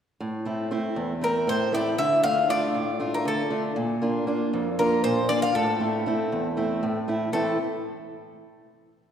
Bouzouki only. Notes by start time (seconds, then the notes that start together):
1.24 A#4
1.49 C5
1.74 D5
1.98 E5
2.24 F5
2.50 D5
3.14 A#4
3.28 A4
4.79 A#4
5.04 C5
5.29 D5
5.42 F5
5.55 A4
7.33 A4